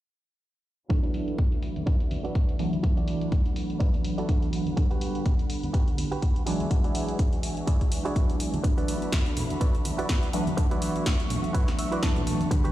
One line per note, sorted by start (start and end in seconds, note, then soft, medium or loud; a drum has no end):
0.89 2.57 E3 medium
0.89 2.57 F#3 medium
0.89 2.57 A3 medium
0.89 2.57 B3 medium
0.89 2.57 D4 medium
0.89 4.73 F#4 medium
0.89 4.73 D5 medium
0.89 2.82 E5 medium
0.89 6.43 B5 medium
0.89 muted clean electric guitar stroke loud
0.89 kick loud
0.89 closed hi-hat medium
1.03 1.45 D4 medium
1.03 1.45 E4 medium
1.03 1.45 F#4 medium
1.03 1.46 B4 medium
1.03 closed hi-hat soft
1.14 open hi-hat medium
1.28 closed hi-hat soft
1.38 kick loud
1.38 closed hi-hat medium
1.52 closed hi-hat soft
1.63 open hi-hat medium
1.76 closed hi-hat soft
1.76 tambourine soft
1.76 high conga medium
1.86 2.00 D4 medium
1.86 2.00 E4 medium
1.86 2.01 F#4 medium
1.86 2.01 B4 medium
1.86 kick loud
1.86 closed hi-hat medium
1.86 tambourine medium
2.00 closed hi-hat soft
2.00 tambourine soft
2.11 muted clean electric guitar stroke soft
2.11 open hi-hat medium
2.11 tambourine medium
2.11 high conga medium
2.24 2.54 D4 medium
2.24 2.54 E4 medium
2.24 2.54 F#4 medium
2.24 2.54 B4 medium
2.24 closed hi-hat soft
2.24 tambourine soft
2.35 kick loud
2.35 closed hi-hat medium
2.35 tambourine soft
2.49 closed hi-hat soft
2.49 tambourine soft
2.59 2.78 E3 medium
2.59 2.78 F#3 medium
2.59 2.78 A3 medium
2.59 2.78 B3 medium
2.59 2.79 D4 loud
2.59 open hi-hat medium
2.59 tambourine medium
2.72 closed hi-hat soft
2.72 tambourine soft
2.72 high conga medium
2.83 4.26 E3 medium
2.83 4.26 F#3 medium
2.83 4.26 A3 medium
2.83 4.26 B3 medium
2.83 4.27 D4 medium
2.83 6.43 F#5 medium
2.83 muted clean electric guitar stroke loud
2.83 kick loud
2.83 closed hi-hat medium
2.83 tambourine soft
2.97 3.39 D4 medium
2.97 3.39 E4 medium
2.97 3.39 F#4 medium
2.97 3.39 D5 medium
2.97 closed hi-hat soft
2.97 tambourine soft
3.08 open hi-hat medium
3.08 tambourine medium
3.21 closed hi-hat soft
3.21 tambourine soft
3.32 kick loud
3.32 closed hi-hat medium
3.46 closed hi-hat soft
3.56 open hi-hat medium
3.56 tambourine medium
3.70 closed hi-hat soft
3.70 tambourine soft
3.80 3.94 D4 medium
3.80 3.94 E4 medium
3.80 3.94 F#4 medium
3.80 3.94 B4 medium
3.80 kick loud
3.80 closed hi-hat medium
3.94 closed hi-hat soft
4.04 muted clean electric guitar stroke soft
4.04 open hi-hat loud
4.18 4.47 D4 medium
4.18 4.48 E4 medium
4.18 4.48 F#4 medium
4.18 4.48 A4 medium
4.18 closed hi-hat soft
4.28 4.74 E3 medium
4.28 4.75 F#3 medium
4.28 4.75 A3 medium
4.28 4.75 B3 medium
4.28 4.75 D4 medium
4.28 kick loud
4.28 closed hi-hat medium
4.42 closed hi-hat soft
4.53 open hi-hat loud
4.53 tambourine medium
4.66 closed hi-hat soft
4.66 tambourine soft
4.66 high conga medium
4.77 6.44 D3 medium
4.77 6.44 G3 medium
4.77 6.44 B3 medium
4.77 6.45 D4 medium
4.77 muted clean electric guitar stroke loud
4.77 kick loud
4.77 closed hi-hat medium
4.90 5.32 F#4 medium
4.90 5.32 G4 medium
4.90 5.33 B4 medium
4.90 closed hi-hat soft
4.90 tambourine soft
5.01 open hi-hat loud
5.01 tambourine medium
5.15 closed hi-hat soft
5.15 tambourine soft
5.26 kick loud
5.26 closed hi-hat medium
5.39 closed hi-hat soft
5.50 open hi-hat loud
5.50 tambourine medium
5.63 closed hi-hat soft
5.63 tambourine soft
5.63 high conga medium
5.73 5.87 F#4 medium
5.73 5.88 G4 medium
5.73 5.88 B4 medium
5.73 kick loud
5.73 closed hi-hat medium
5.73 tambourine soft
5.88 closed hi-hat soft
5.88 tambourine soft
5.98 muted clean electric guitar stroke soft
5.98 open hi-hat loud
5.98 tambourine medium
5.98 high conga medium
6.12 6.41 F#4 medium
6.12 6.41 G4 medium
6.12 6.41 B4 medium
6.12 closed hi-hat soft
6.12 tambourine soft
6.22 kick loud
6.22 closed hi-hat medium
6.22 tambourine soft
6.36 closed hi-hat soft
6.36 tambourine soft
6.46 6.65 E3 medium
6.46 6.66 F#3 medium
6.46 6.66 G#3 medium
6.46 6.66 B3 medium
6.46 12.48 D4 medium
6.46 6.66 D4 loud
6.46 6.76 E4 medium
6.46 6.76 F#4 medium
6.46 8.62 F#4 medium
6.46 6.76 G#4 medium
6.46 6.76 D5 medium
6.46 8.62 E5 medium
6.46 8.62 G#5 medium
6.46 open hi-hat loud
6.46 tambourine medium
6.60 closed hi-hat soft
6.60 tambourine soft
6.60 high conga medium
6.70 8.13 E3 medium
6.70 8.13 F#3 medium
6.70 8.13 G#3 medium
6.70 8.14 B3 medium
6.70 8.14 D4 loud
6.70 kick loud
6.70 closed hi-hat medium
6.84 7.26 E4 medium
6.84 7.26 F#4 medium
6.84 7.26 G#4 medium
6.84 7.26 D5 medium
6.84 closed hi-hat soft
6.84 tambourine soft
6.95 open hi-hat loud
6.95 tambourine medium
7.08 closed hi-hat soft
7.08 tambourine soft
7.19 kick loud
7.19 closed hi-hat medium
7.33 closed hi-hat soft
7.43 open hi-hat loud
7.57 closed hi-hat soft
7.57 tambourine soft
7.67 7.81 E4 medium
7.67 7.81 F#4 medium
7.67 7.81 G#4 medium
7.67 7.81 D5 medium
7.67 kick loud
7.67 closed hi-hat medium
7.81 kick medium
7.81 closed hi-hat soft
7.81 tambourine soft
7.91 muted clean electric guitar stroke soft
7.91 open hi-hat loud
7.91 tambourine medium
8.05 8.35 E4 medium
8.05 8.35 F#4 medium
8.05 8.35 G#4 medium
8.05 8.35 D5 medium
8.05 closed hi-hat soft
8.16 8.62 E3 medium
8.16 8.62 F#3 medium
8.16 8.62 G#3 medium
8.16 8.62 B3 medium
8.16 8.62 D4 medium
8.16 kick loud
8.16 closed hi-hat medium
8.30 closed hi-hat soft
8.40 open hi-hat loud
8.40 tambourine medium
8.54 closed hi-hat soft
8.54 tambourine soft
8.54 high conga medium
8.64 10.31 E3 medium
8.64 10.31 F#3 medium
8.64 10.31 A3 medium
8.64 10.31 B3 medium
8.64 10.32 D4 medium
8.64 12.47 F#4 medium
8.64 12.47 E5 medium
8.64 10.56 B5 medium
8.64 muted clean electric guitar stroke loud
8.64 kick loud
8.64 closed hi-hat medium
8.64 tambourine soft
8.77 9.19 E4 medium
8.77 9.19 F#4 medium
8.77 9.19 B4 medium
8.77 9.20 D5 medium
8.77 closed hi-hat soft
8.77 tambourine soft
8.88 open hi-hat medium
8.88 tambourine medium
9.02 closed hi-hat soft
9.02 tambourine soft
9.12 kick loud
9.12 snare loud
9.12 closed hi-hat medium
9.26 closed hi-hat soft
9.36 open hi-hat loud
9.36 tambourine medium
9.36 low conga medium
9.50 closed hi-hat soft
9.50 tambourine soft
9.50 high conga medium
9.61 9.74 E4 medium
9.61 9.75 F#4 medium
9.61 9.75 B4 medium
9.61 9.75 D5 medium
9.61 kick loud
9.61 closed hi-hat medium
9.61 tambourine soft
9.75 closed hi-hat soft
9.75 tambourine soft
9.85 muted clean electric guitar stroke soft
9.85 open hi-hat loud
9.85 tambourine medium
9.85 high conga medium
9.98 10.28 E4 medium
9.98 10.28 F#4 medium
9.98 10.28 B4 medium
9.98 10.29 D5 medium
9.98 closed hi-hat soft
9.98 tambourine soft
10.09 kick loud
10.09 snare loud
10.09 closed hi-hat medium
10.09 tambourine soft
10.23 closed hi-hat soft
10.33 10.52 E3 medium
10.33 10.53 F#3 medium
10.33 10.53 A3 medium
10.33 10.53 B3 medium
10.33 10.53 D4 loud
10.33 open hi-hat medium
10.33 tambourine medium
10.47 closed hi-hat soft
10.47 tambourine soft
10.47 high conga medium
10.57 12.00 E3 medium
10.57 12.00 F#3 medium
10.57 12.00 A3 medium
10.57 12.01 B3 medium
10.57 12.01 D4 medium
10.57 12.49 C#6 medium
10.57 muted clean electric guitar stroke loud
10.57 kick loud
10.57 closed hi-hat medium
10.57 tambourine medium
10.71 11.13 E4 medium
10.71 11.13 F#4 medium
10.71 11.13 B4 medium
10.71 11.13 D5 medium
10.71 closed hi-hat soft
10.71 tambourine soft
10.82 open hi-hat medium
10.82 tambourine medium
10.95 closed hi-hat soft
10.95 tambourine soft
11.06 kick loud
11.06 snare loud
11.06 closed hi-hat medium
11.20 closed hi-hat soft
11.30 open hi-hat loud
11.30 tambourine medium
11.30 low conga medium
11.44 closed hi-hat soft
11.44 tambourine soft
11.54 11.68 E4 medium
11.54 11.68 F#4 medium
11.54 11.68 B4 medium
11.54 11.68 C#5 medium
11.54 kick loud
11.54 closed hi-hat medium
11.54 tambourine soft
11.68 snare soft
11.68 closed hi-hat soft
11.78 12.01 E5 medium
11.78 muted clean electric guitar stroke soft
11.78 open hi-hat medium
11.78 tambourine medium
11.92 12.22 E4 medium
11.92 12.22 F#4 medium
11.92 12.22 B4 medium
11.92 12.22 D5 medium
11.92 closed hi-hat soft
11.92 tambourine soft
12.03 12.49 E3 medium
12.03 12.49 F#3 medium
12.03 12.49 A3 medium
12.03 12.49 B3 medium
12.03 12.49 D4 medium
12.03 12.48 A5 medium
12.03 kick loud
12.03 snare loud
12.03 closed hi-hat medium
12.16 closed hi-hat soft
12.16 tambourine soft
12.16 low conga medium
12.27 open hi-hat medium
12.27 tambourine medium
12.27 low conga medium
12.40 closed hi-hat soft
12.40 tambourine soft
12.40 high conga medium
12.50 12.72 D3 medium
12.50 12.72 G3 medium
12.50 12.72 B3 medium
12.50 12.72 D4 medium
12.50 12.72 F#5 medium
12.50 12.72 B5 medium
12.50 muted clean electric guitar stroke loud
12.50 kick loud
12.50 closed hi-hat medium
12.50 tambourine soft
12.64 12.72 F#4 medium
12.64 12.72 G4 medium
12.64 12.72 B4 medium
12.64 closed hi-hat soft
12.64 tambourine soft